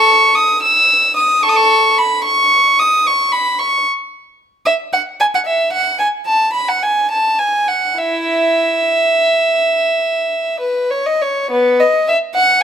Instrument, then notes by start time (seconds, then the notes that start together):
violin
Already playing: A4 C#6
0.35 D#6
0.63 E6
1.17 D#6
1.43 A4 C#6
1.49 D#6
1.57 C#6
1.98 B5
2.25 C#6
2.79 D#6
3.07 C#6
3.32 B5
3.59 C#6
4.66 E5
4.93 F#5
5.20 G#5
5.34 F#5
5.46 E5
5.73 F#5
5.99 G#5
6.26 A5
6.53 B5
6.69 F#5
6.83 G#5
7.11 A5
7.39 G#5
7.68 F#5
7.98 E4 E5
10.60 B4
10.91 C#5
11.06 D#5
11.22 C#5
11.51 B3
11.80 D#5
12.09 E5
12.35 F#5